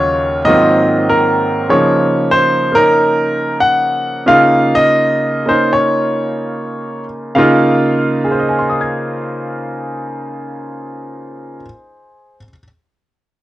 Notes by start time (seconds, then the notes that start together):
Already playing: D#2 C#3 F#3 F4 C#5
0.45 G#2 D#3 F#3 A#3 C4 D#5
0.49 F4
1.09 A#4
1.69 C#3 F3 A#3 D#4 C#5
2.31 C5
2.72 A#3 C#4 D#4 A#4
3.60 F#5
4.26 C#3 A#3 D#4 F4 F5
4.75 D#5
5.46 A#3 C#4 D#4 C5
5.73 C#5
7.35 C#3 A#3 D#4 F4 F5
8.24 G#4
8.31 C5
8.39 D#5
8.49 G#5
8.59 C6
8.70 D#6
8.81 G#6